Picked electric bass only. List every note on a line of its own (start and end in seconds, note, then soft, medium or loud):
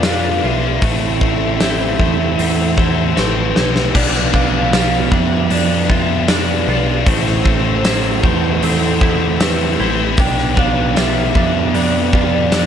0.00 0.40 F2 loud
0.44 0.80 B1 medium
0.82 1.95 A1 loud
1.99 2.36 E2 medium
2.39 3.13 E2 medium
3.17 3.52 A1 medium
3.56 3.91 B1 medium
3.95 5.08 B1 loud
5.12 5.48 F2 medium
5.51 6.64 F2 loud
6.68 7.04 B1 loud
7.07 8.20 A1 loud
8.24 8.60 E2 loud
8.63 9.76 E2 loud
9.80 10.16 A1 medium
10.18 11.31 B1 loud
11.36 11.72 F2 loud
11.74 12.66 F2 loud